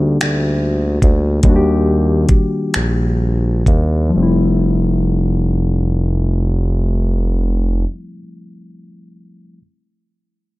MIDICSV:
0, 0, Header, 1, 4, 480
1, 0, Start_track
1, 0, Key_signature, -1, "major"
1, 0, Tempo, 817439
1, 841, Time_signature, 6, 3, 24, 8
1, 841, Tempo, 878477
1, 1801, Tempo, 977199
1, 5439, End_track
2, 0, Start_track
2, 0, Title_t, "Reed electric piano"
2, 0, Program_c, 0, 4
2, 0, Control_c, 0, 64, 127
2, 0, Note_on_c, 0, 55, 54
2, 0, Note_on_c, 0, 58, 62
2, 0, Note_on_c, 0, 62, 64
2, 0, Note_on_c, 0, 63, 63
2, 0, Note_on_c, 0, 66, 64
2, 0, Note_on_c, 0, 67, 70
2, 813, Note_off_c, 0, 63, 0
2, 818, Note_off_c, 0, 55, 0
2, 821, Note_off_c, 0, 58, 0
2, 828, Note_off_c, 0, 62, 0
2, 838, Note_on_c, 0, 51, 65
2, 849, Note_on_c, 0, 55, 64
2, 850, Note_off_c, 0, 67, 0
2, 857, Note_on_c, 0, 58, 52
2, 867, Note_on_c, 0, 62, 58
2, 873, Note_off_c, 0, 66, 0
2, 873, Note_on_c, 0, 66, 57
2, 895, Note_off_c, 0, 66, 0
2, 909, Note_on_c, 0, 67, 72
2, 2246, Note_on_c, 0, 53, 63
2, 2248, Note_off_c, 0, 51, 0
2, 2253, Note_off_c, 0, 55, 0
2, 2256, Note_off_c, 0, 58, 0
2, 2261, Note_off_c, 0, 62, 0
2, 2262, Note_on_c, 0, 55, 56
2, 2276, Control_c, 0, 64, 0
2, 2279, Note_on_c, 0, 57, 55
2, 2280, Note_off_c, 0, 67, 0
2, 2292, Note_on_c, 0, 60, 52
2, 2311, Note_on_c, 0, 64, 68
2, 2367, Control_c, 0, 64, 127
2, 4200, Note_off_c, 0, 53, 0
2, 4215, Note_off_c, 0, 55, 0
2, 4233, Note_off_c, 0, 57, 0
2, 4246, Note_off_c, 0, 60, 0
2, 4265, Note_off_c, 0, 64, 0
2, 4947, Control_c, 0, 64, 0
2, 5439, End_track
3, 0, Start_track
3, 0, Title_t, "Analog synth bass"
3, 0, Program_c, 1, 38
3, 0, Note_on_c, 1, 38, 84
3, 104, Note_off_c, 1, 38, 0
3, 134, Note_on_c, 1, 38, 80
3, 581, Note_off_c, 1, 38, 0
3, 607, Note_on_c, 1, 38, 84
3, 823, Note_off_c, 1, 38, 0
3, 849, Note_on_c, 1, 39, 85
3, 1292, Note_off_c, 1, 39, 0
3, 1316, Note_on_c, 1, 34, 42
3, 1363, Note_off_c, 1, 34, 0
3, 1566, Note_on_c, 1, 34, 76
3, 2018, Note_off_c, 1, 34, 0
3, 2040, Note_on_c, 1, 39, 86
3, 2254, Note_off_c, 1, 39, 0
3, 2277, Note_on_c, 1, 29, 80
3, 4091, Note_off_c, 1, 29, 0
3, 5439, End_track
4, 0, Start_track
4, 0, Title_t, "Drums"
4, 122, Note_on_c, 9, 42, 64
4, 124, Note_on_c, 9, 26, 106
4, 181, Note_off_c, 9, 42, 0
4, 183, Note_off_c, 9, 26, 0
4, 600, Note_on_c, 9, 36, 79
4, 602, Note_on_c, 9, 42, 57
4, 658, Note_off_c, 9, 36, 0
4, 661, Note_off_c, 9, 42, 0
4, 839, Note_on_c, 9, 42, 74
4, 842, Note_on_c, 9, 36, 101
4, 894, Note_off_c, 9, 42, 0
4, 897, Note_off_c, 9, 36, 0
4, 1308, Note_on_c, 9, 42, 57
4, 1310, Note_on_c, 9, 36, 75
4, 1362, Note_off_c, 9, 42, 0
4, 1365, Note_off_c, 9, 36, 0
4, 1555, Note_on_c, 9, 42, 75
4, 1557, Note_on_c, 9, 26, 98
4, 1609, Note_off_c, 9, 42, 0
4, 1611, Note_off_c, 9, 26, 0
4, 2034, Note_on_c, 9, 36, 73
4, 2037, Note_on_c, 9, 42, 50
4, 2083, Note_off_c, 9, 36, 0
4, 2086, Note_off_c, 9, 42, 0
4, 5439, End_track
0, 0, End_of_file